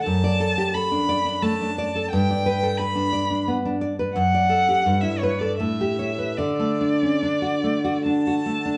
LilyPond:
<<
  \new Staff \with { instrumentName = "Violin" } { \time 3/4 \key d \major \tempo 4 = 86 a''4 b''4 a''4 | g''4 b''4 r4 | fis''4~ fis''16 e''16 cis''16 d''16 e''4 | d''2 a''4 | }
  \new Staff \with { instrumentName = "Nylon-string guitar" } { \time 3/4 \key d \major fis,16 d''16 a'16 g'16 a'16 d'16 d''16 d'16 a16 d'16 d''16 a'16 | g,16 d''16 b'16 a'16 b'16 d'16 d''16 d'16 b16 d'16 d''16 b'16 | fis,16 d''16 a'16 g'16 g,16 e'16 b'16 a'16 a,16 g'16 cis''16 b'16 | d16 a16 d'16 cis'16 d'16 fis'16 a16 fis'16 d'16 fis'16 a16 d'16 | }
>>